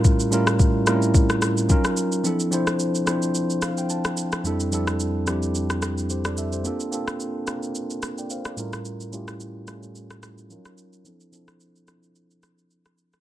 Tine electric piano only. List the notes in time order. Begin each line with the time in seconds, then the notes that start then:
Already playing: A2 G3 C#4 E4 F4 A#4
0.31 A2 G3 C#4 E4 F4 A#4
0.86 A2 G3 C4 E4 F4 A#4
0.94 C#4
1.69 F#3 C#4 D#4 F4 A#4
2.24 F3 C4 D4 E4 A4
2.51 F3 C4 D4 E4 C5
3.06 F3 C4 D4 E4 C5
3.63 F5
3.78 G5
3.90 A5
4.44 F2 G3 C4 D4 E4 A4
4.71 F2 G3 C4 D4 E4 A4
5.26 F2 G3 C4 D4 E4 G4
6.10 G4 C5
6.26 A4 D5
6.38 A4 E5
6.53 G4 C5
6.64 A#3 C4 D4 F4 A4
6.91 A#3 C4 D4 F4 A4
7.46 A#3 C4 D4 F4 A#4
8.18 D5 G5
8.31 C5 F5
8.46 A4 D5
8.56 A2 G3 C#4 E4 F4 A#4
9.12 A2 G3 C#4 E4 F4 G4
9.67 A2 G3 C#4 E4 F4 A4
10.49 F3 C#4 D#4 F4 A#4
10.56 F#3
11.04 F3 C4 D4 E4 A4
11.32 F3 C4 D4 E4 A4
11.87 F3 C4 D4 E4 A4